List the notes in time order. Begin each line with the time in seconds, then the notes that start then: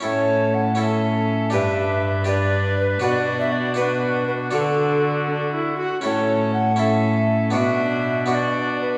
0.00 A2 C#4 E4 A4 C#5
0.04 C#4
0.54 F#5
0.75 C#4 E4 A4
0.80 E5
1.50 G2 D4 G4 B4 E5
2.24 D4 G4 B4
2.29 D4 D5
2.80 B4
3.00 B2 D4 F#4 B4
3.04 D4 F#4 D5
3.40 E5
3.52 D5
3.74 D4 F#4 B4
3.79 D4 F#4
4.28 B4
4.51 D3 D4 F#4 A4
4.55 D4
5.29 D4
5.54 E4
5.79 F#4
6.01 A2 C#4 E4 A4 C#5
6.54 F#5
6.76 C#4 E4 A4 E5
7.50 B2 B3 D4 F#4
7.54 B2 D4 F#4 E5
8.26 B3 D4 F#4
8.30 D5 E5
8.81 B4